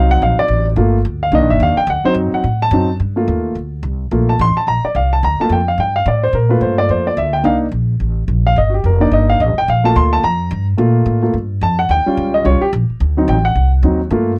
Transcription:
0.00 0.21 C2 medium
0.00 0.73 F#3 medium
0.00 0.74 C4 soft
0.00 0.74 D#4 medium
0.00 0.11 F5 medium
0.11 0.21 F#5 medium
0.22 0.37 A#1 medium
0.22 0.38 F5 medium
0.37 0.65 D5 medium
0.37 muted upright bass stroke soft
0.48 0.75 A1 medium
0.76 1.04 G1 medium
0.76 0.97 A3 soft
0.76 0.97 A#3 soft
0.76 0.98 F4 medium
1.05 1.31 D2 loud
1.23 1.33 F5 medium
1.32 1.41 C2 medium
1.32 1.75 D#3 medium
1.32 1.75 A#3 soft
1.32 1.76 D4 medium
1.32 1.50 D#5 medium
1.41 1.50 A#1 medium
1.50 1.59 G1 medium
1.50 1.61 E5 medium
1.60 1.75 D#2 loud
1.60 1.78 F5 medium
1.76 1.88 G5 medium
1.76 muted upright bass stroke soft
1.87 2.03 D2 loud
1.87 2.06 F#5 medium
2.04 2.42 F#3 medium
2.04 2.42 C4 soft
2.04 2.42 D#4 medium
2.04 2.12 C5 medium
2.04 muted upright bass stroke soft
2.14 2.31 F#2 medium
2.32 2.60 F#5 medium
2.32 muted upright bass stroke soft
2.44 2.70 A2 medium
2.62 2.93 A5 medium
2.71 2.98 F#2 loud
2.71 2.87 F#3 soft
2.71 2.87 C4 soft
2.71 2.88 D#4 soft
3.00 3.27 G2 medium
3.16 3.53 A3 soft
3.16 3.54 A#3 soft
3.16 3.54 F4 medium
3.28 3.55 D#2 medium
3.55 3.82 D2 medium
3.83 4.10 C2 medium
4.11 4.38 A#1 medium
4.11 4.32 A3 soft
4.11 4.32 A#3 soft
4.11 4.32 F4 soft
4.29 4.39 A5 medium
4.39 4.55 A1 loud
4.39 4.57 C6 loud
4.56 4.67 A5 medium
4.56 muted upright bass stroke soft
4.67 4.83 A#1 medium
4.67 4.84 A#5 medium
4.84 4.95 D5 medium
4.84 muted upright bass stroke soft
4.95 5.22 C2 medium
4.95 5.12 F5 medium
5.13 5.23 A5 medium
5.23 5.38 D2 medium
5.23 5.40 A#5 medium
5.40 5.57 A3 soft
5.40 5.57 A#3 soft
5.40 5.57 F4 medium
5.40 5.51 A5 medium
5.40 muted upright bass stroke soft
5.49 5.77 F2 medium
5.49 5.68 G5 medium
5.68 5.79 F5 medium
5.78 6.05 G2 medium
5.78 5.95 G5 medium
5.96 6.06 F5 medium
6.06 6.32 A2 loud
6.06 6.23 D5 medium
6.24 6.34 C5 medium
6.33 6.60 A#2 medium
6.33 6.51 A#4 medium
6.49 7.41 A3 soft
6.49 7.41 A#3 soft
6.49 7.41 F4 medium
6.49 6.61 B4 medium
6.61 6.88 G2 medium
6.61 6.78 C5 medium
6.78 6.89 D5 medium
6.89 7.16 F2 medium
6.89 7.06 C5 medium
7.07 7.17 D5 medium
7.17 7.43 D2 medium
7.17 7.34 E5 medium
7.33 7.44 G5 medium
7.43 7.71 C2 medium
7.43 7.64 A#3 soft
7.43 7.65 D4 soft
7.43 7.65 D#4 medium
7.43 7.55 F5 medium
7.71 7.99 A#1 medium
8.00 8.27 A1 medium
8.28 8.55 A#1 medium
8.47 8.57 F5 medium
8.56 8.83 G1 medium
8.56 8.73 D#5 medium
8.70 8.71 F#4 soft
8.74 8.84 G4 medium
8.84 9.11 F1 medium
8.84 9.01 A#4 medium
9.00 9.38 A#3 soft
9.00 9.38 D4 soft
9.00 9.38 D#4 medium
9.00 9.12 D5 medium
9.11 9.39 G1 medium
9.11 9.29 D#5 medium
9.30 9.40 F5 medium
9.40 9.50 A1 medium
9.40 9.57 D#5 medium
9.50 9.58 G1 medium
9.58 9.67 D#1 medium
9.58 9.68 G5 medium
9.68 9.95 A#1 medium
9.68 9.85 F5 medium
9.84 10.21 A3 soft
9.84 10.21 A#3 soft
9.84 10.22 F4 medium
9.84 9.96 A5 medium
9.96 10.22 D2 loud
9.96 10.12 C6 medium
10.13 10.23 A5 medium
10.23 10.50 F2 medium
10.23 10.65 A#5 medium
10.51 10.78 G2 loud
10.77 11.05 A#2 medium
10.77 11.20 A3 soft
10.77 11.21 A#3 soft
10.77 11.21 F4 medium
11.06 11.33 A2 medium
11.22 11.33 A3 soft
11.22 11.33 A#3 soft
11.22 11.33 F4 soft
11.34 11.61 G2 medium
11.61 11.88 F2 loud
11.61 11.79 A5 medium
11.79 11.89 F#5 medium
11.89 12.05 D#2 medium
11.89 12.32 G5 medium
12.06 12.43 G3 soft
12.06 12.43 C#4 soft
12.06 12.43 F4 medium
12.06 muted upright bass stroke soft
12.17 12.44 C#2 medium
12.34 12.45 D#5 medium
12.44 12.60 C2 medium
12.44 12.60 G3 soft
12.44 12.60 C#4 soft
12.44 12.60 F4 soft
12.44 12.62 C#5 medium
12.61 12.68 G4 medium
12.61 muted upright bass stroke soft
12.73 12.88 A#1 loud
12.90 muted upright bass stroke soft
13.00 13.27 D2 medium
13.17 13.34 F#3 medium
13.17 13.34 C4 soft
13.17 13.34 D#4 medium
13.28 13.55 A1 loud
13.28 13.45 G5 medium
13.45 13.71 F#5 medium
13.55 13.82 C2 medium
13.83 14.10 D#2 medium
13.83 13.99 F#3 medium
13.83 13.99 C4 soft
13.83 13.99 D#4 medium
14.10 14.38 G2 medium
14.10 14.31 A3 medium
14.10 14.31 A#3 soft
14.10 14.32 F4 medium

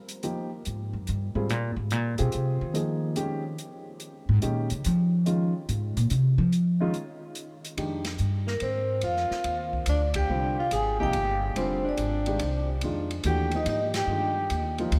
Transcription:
0.09 closed hi-hat soft
0.23 0.49 F3 medium
0.23 0.49 A#3 soft
0.23 0.49 D#4 soft
0.23 0.49 G4 medium
0.23 closed hi-hat soft
0.65 0.93 G#2 medium
0.65 closed hi-hat soft
0.93 1.07 F#2 medium
1.07 1.35 G2 medium
1.07 closed hi-hat soft
1.35 1.50 G#2 medium
1.35 1.47 G3 medium
1.35 1.48 C4 soft
1.35 1.48 F4 soft
1.35 1.48 G#4 medium
1.49 1.76 A#2 medium
1.49 closed hi-hat soft
1.76 1.92 G#2 medium
1.90 2.19 A#2 medium
1.90 closed hi-hat soft
2.18 2.33 B2 medium
2.18 2.72 C4 medium
2.18 2.72 F4 medium
2.18 2.72 G4 medium
2.18 2.72 G#4 medium
2.18 closed hi-hat soft
2.32 2.61 C3 medium
2.32 closed hi-hat soft
2.61 3.55 D#3 medium
2.74 3.15 F3 medium
2.74 3.15 A#3 medium
2.74 3.15 D#4 soft
2.74 3.15 G#4 medium
2.74 closed hi-hat soft
3.16 3.41 D#3 medium
3.16 3.42 G#3 medium
3.16 3.41 C#4 medium
3.16 3.42 G4 medium
3.16 closed hi-hat soft
3.58 closed hi-hat soft
4.00 closed hi-hat soft
4.29 4.42 G#2 medium
4.42 4.70 A#2 medium
4.42 4.68 D#3 medium
4.42 4.67 G#3 medium
4.42 4.68 C#4 medium
4.42 4.68 G4 medium
4.42 closed hi-hat soft
4.70 4.84 C#3 medium
4.70 closed hi-hat soft
4.84 5.51 F3 loud
4.84 closed hi-hat medium
5.26 5.51 D#3 medium
5.26 5.51 G#3 medium
5.26 5.51 C#4 medium
5.26 5.52 F4 medium
5.26 closed hi-hat soft
5.69 5.96 G#2 medium
5.69 closed hi-hat soft
5.97 6.10 A#2 loud
5.97 closed hi-hat soft
6.10 6.38 C3 loud
6.10 closed hi-hat soft
6.38 6.90 F3 loud
6.52 closed hi-hat soft
6.80 6.92 D#3 medium
6.80 6.92 G#3 medium
6.80 6.93 C#4 medium
6.80 6.93 F4 medium
6.94 closed hi-hat soft
7.35 closed hi-hat soft
7.65 closed hi-hat soft
7.77 8.18 F2 medium
7.77 8.03 D#3 medium
7.77 8.03 G#3 soft
7.77 8.03 D4 soft
7.77 8.03 G4 medium
7.77 ride soft
8.05 snare medium
8.05 ride medium
8.18 8.60 G2 medium
8.18 hi-hat pedal soft
8.47 8.54 A#3 medium
8.47 8.55 A#4 medium
8.47 snare soft
8.60 9.02 G#2 medium
8.60 9.01 C4 medium
8.60 9.05 C5 medium
8.60 ride soft
9.01 9.30 F2 medium
9.01 9.70 F4 medium
9.01 9.71 F5 medium
9.01 ride soft
9.16 snare soft
9.31 muted upright bass stroke soft
9.31 snare soft
9.44 9.86 D#2 medium
9.44 ride soft
9.73 kick medium
9.86 10.28 D2 medium
9.86 10.01 D4 medium
9.86 10.02 D5 medium
9.86 hi-hat pedal medium
9.86 ride medium
10.14 10.55 G4 medium
10.14 10.60 G5 medium
10.14 kick medium
10.14 ride medium
10.29 10.70 C2 medium
10.29 10.55 D3 medium
10.29 10.55 G3 soft
10.29 10.55 C4 soft
10.29 10.56 F4 medium
10.59 10.71 F4 medium
10.59 10.72 F5 medium
10.71 11.12 G#1 medium
10.71 10.99 G#4 medium
10.71 11.00 G#5 medium
10.71 hi-hat pedal soft
10.71 ride medium
11.00 11.13 C3 medium
11.00 11.12 F3 medium
11.00 11.13 A#3 medium
11.00 11.13 D#4 medium
11.00 11.39 G4 medium
11.00 11.41 G5 loud
11.00 kick soft
11.13 11.55 G1 medium
11.13 ride medium
11.56 11.96 F1 medium
11.56 11.82 D3 medium
11.56 11.81 G3 medium
11.56 11.82 C4 medium
11.56 11.82 F4 medium
11.56 ride soft
11.61 11.85 C5 medium
11.84 12.64 D4 medium
11.89 12.67 D5 medium
11.97 12.39 G#1 medium
11.97 hi-hat pedal soft
11.97 ride soft
12.26 12.39 D#3 medium
12.26 12.39 G#3 medium
12.26 12.39 D4 medium
12.26 12.39 G4 medium
12.26 ride soft
12.39 12.81 C2 medium
12.39 ride medium
12.81 13.23 F2 medium
12.81 13.08 D#3 medium
12.81 13.08 G#3 soft
12.81 13.08 D4 soft
12.81 13.08 F4 medium
12.81 ride medium
13.11 ride soft
13.24 13.65 D#2 medium
13.24 13.50 E3 medium
13.24 13.50 A3 soft
13.24 13.50 D4 soft
13.24 13.50 F#4 medium
13.24 13.51 G4 medium
13.24 hi-hat pedal soft
13.24 ride medium
13.29 13.53 G5 medium
13.51 13.90 F3 soft
13.51 13.90 A#3 soft
13.51 13.90 D#4 soft
13.51 13.90 G4 medium
13.51 ride soft
13.56 13.67 D#4 medium
13.56 13.69 D#5 medium
13.66 14.06 G#2 medium
13.66 13.81 D#4 medium
13.66 13.82 D#5 medium
13.66 ride medium
13.94 14.76 G4 medium
13.94 14.76 G5 medium
13.94 snare medium
13.94 ride medium
14.07 14.48 G2 medium
14.07 14.34 D#3 medium
14.07 14.34 G#3 medium
14.07 14.35 D4 soft
14.07 14.34 F4 medium
14.50 14.91 D#2 medium
14.50 hi-hat pedal soft
14.50 ride medium
14.78 14.91 F3 medium
14.78 14.91 A#3 medium
14.78 14.91 D#4 medium
14.78 14.92 F4 medium
14.78 ride soft
14.92 14.99 D2 loud
14.92 ride medium

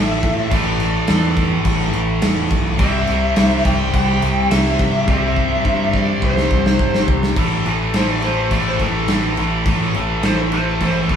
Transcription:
0.00 0.19 A1 medium
0.00 0.49 A2 medium
0.00 0.52 E3 loud
0.00 0.52 A3 loud
0.00 0.48 E5 loud
0.23 0.46 A2 medium
0.23 kick medium
0.23 crash medium
0.50 0.98 A1 loud
0.50 2.77 A2 loud
0.50 2.81 E3 loud
0.50 2.79 A3 loud
0.50 1.33 D5 medium
0.50 kick loud
0.50 crash medium
0.80 crash medium
1.07 1.55 E2 medium
1.07 snare loud
1.07 crash medium
1.37 kick medium
1.37 crash medium
1.65 1.88 A1 loud
1.65 kick medium
1.65 crash medium
1.80 snare soft
1.93 2.17 A1 loud
1.93 crash medium
2.22 2.46 E1 medium
2.22 snare loud
2.22 crash medium
2.50 2.74 B1 medium
2.50 kick loud
2.50 crash medium
2.79 3.03 C2 loud
2.79 5.06 C3 loud
2.79 5.07 G3 loud
2.79 5.12 C4 loud
2.79 3.66 E5 loud
2.79 kick loud
2.79 crash medium
3.07 3.32 C2 medium
3.07 crash medium
3.36 3.60 C2 loud
3.36 snare loud
3.36 crash medium
3.65 3.88 C2 medium
3.65 3.94 G5 loud
3.65 kick medium
3.65 crash medium
3.94 4.17 C2 loud
3.94 4.48 G5 loud
3.94 kick medium
3.94 crash medium
4.22 4.45 C2 loud
4.22 crash medium
4.51 4.74 C2 medium
4.51 5.09 E5 loud
4.51 snare loud
4.51 crash loud
4.79 5.03 C3 medium
4.79 kick medium
4.79 crash medium
5.08 5.54 C2 medium
5.08 7.35 C3 medium
5.08 7.36 G3 loud
5.08 5.98 E5 loud
5.08 kick loud
5.12 7.37 C4 loud
5.36 kick medium
5.65 6.11 G2 medium
5.65 kick medium
5.94 6.24 D5 medium
5.94 kick medium
6.22 6.46 C2 loud
6.22 7.06 C5 medium
6.22 kick medium
6.37 snare medium
6.51 6.74 C2 medium
6.51 kick loud
6.66 snare medium
6.79 7.03 G1 medium
6.79 kick loud
6.95 snare medium
7.08 7.31 C2 medium
7.08 kick loud
7.23 snare medium
7.36 7.64 A1 medium
7.36 7.65 A2 medium
7.36 7.66 E3 loud
7.36 7.67 A3 loud
7.36 kick loud
7.36 crash medium
7.66 7.94 A1 medium
7.66 7.93 A2 medium
7.66 7.95 E3 medium
7.66 7.95 A3 loud
7.66 crash medium
7.94 8.50 A1 medium
7.94 8.21 A2 medium
7.94 8.22 E3 medium
7.94 8.23 A3 medium
7.94 8.09 C5 medium
7.94 snare loud
7.94 crash medium
8.11 8.24 D5 medium
8.22 8.49 A2 medium
8.22 8.50 E3 medium
8.22 8.51 A3 loud
8.22 8.38 C5 medium
8.22 crash medium
8.40 8.53 C5 medium
8.50 8.79 A1 medium
8.50 8.79 A2 medium
8.50 8.80 E3 medium
8.50 8.81 A3 loud
8.50 8.68 D5 medium
8.50 kick medium
8.50 crash medium
8.68 8.81 C5 medium
8.80 9.08 A1 medium
8.80 9.08 A2 medium
8.80 9.09 E3 medium
8.80 9.10 A3 medium
8.80 9.09 A4 loud
8.80 kick medium
8.80 crash medium
9.08 9.37 A1 medium
9.08 9.37 A2 medium
9.08 9.37 E3 medium
9.08 9.38 A3 medium
9.08 snare loud
9.08 crash medium
9.37 9.65 A1 medium
9.37 9.65 A2 medium
9.37 9.66 E3 medium
9.37 9.67 A3 medium
9.37 crash medium
9.66 9.94 A1 medium
9.66 9.94 A2 loud
9.66 9.95 E3 loud
9.66 9.95 A3 loud
9.66 kick loud
9.66 crash medium
9.94 10.23 A1 medium
9.94 10.22 A2 medium
9.94 10.23 E3 medium
9.94 10.24 A3 medium
9.94 crash medium
10.23 10.79 A1 medium
10.23 10.51 A2 medium
10.23 10.51 E3 medium
10.23 10.52 A3 loud
10.23 10.41 C5 medium
10.23 snare loud
10.23 crash medium
10.41 10.54 A4 medium
10.52 10.80 A2 medium
10.52 10.80 E3 medium
10.52 10.81 A3 loud
10.52 10.67 C5 medium
10.52 crash medium
10.70 10.82 A4 medium
10.81 11.09 A1 medium
10.81 11.08 A2 medium
10.81 11.09 E3 medium
10.81 11.10 A3 loud
10.81 kick medium
10.81 crash medium
10.85 10.99 C5 medium
10.99 11.14 A4 medium
11.09 11.16 E2 medium
11.09 11.16 A2 medium
11.09 11.16 E3 medium
11.09 11.16 A3 medium
11.09 kick medium
11.09 crash medium

